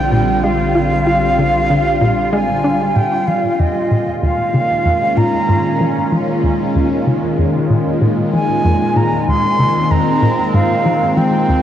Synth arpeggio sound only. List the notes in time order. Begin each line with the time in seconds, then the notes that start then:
0.12 A#2
0.44 G#3
0.75 F4
1.07 F4
1.38 D3
1.70 D3
2.02 A#2
2.33 G#3
2.65 D4
2.96 A#2
3.28 F3
3.59 F2
3.91 A#2
4.22 D#2
4.54 C#3
4.86 F2
5.17 A#2
5.49 G#2
5.80 F3
6.12 F3
6.43 D#2
6.75 D#2
7.07 C#3
7.38 F2
7.70 A#2
8.01 A#2
8.33 F3
8.64 F2
8.96 A#2
9.28 D#2
9.59 C#3
9.91 F2
10.22 A#2
10.54 G#2
10.86 F3
11.17 F3
11.49 D#2